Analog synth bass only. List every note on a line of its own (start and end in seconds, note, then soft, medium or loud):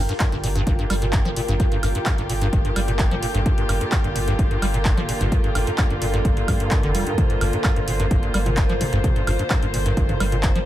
0.32 0.64 G1 loud
0.67 0.87 G1 medium
0.90 1.22 G1 medium
1.25 1.35 G1 loud
1.48 1.58 G1 loud
1.83 1.93 G1 loud
2.18 2.50 G1 loud
2.53 2.73 G1 medium
2.76 3.08 G1 medium
3.11 3.21 G1 loud
3.35 3.44 G1 loud
3.69 3.79 G1 medium
4.04 4.36 G1 loud
4.39 4.59 G1 medium
4.62 4.94 G1 medium
4.97 5.07 G1 loud
5.21 5.30 G1 loud
5.55 5.65 G1 loud
5.90 6.22 G1 loud
6.25 6.45 G1 medium
6.48 6.58 G2 loud
6.83 7.03 F1 loud
7.07 7.16 G2 medium
7.41 7.51 G1 loud
7.76 8.08 G1 loud
8.11 8.31 G1 medium
8.34 8.66 G1 medium
8.69 8.79 G1 loud
8.93 9.02 G1 loud
9.27 9.37 G1 medium
9.62 9.94 G1 loud
9.97 10.17 G1 medium
10.20 10.52 G1 medium
10.55 10.65 G1 loud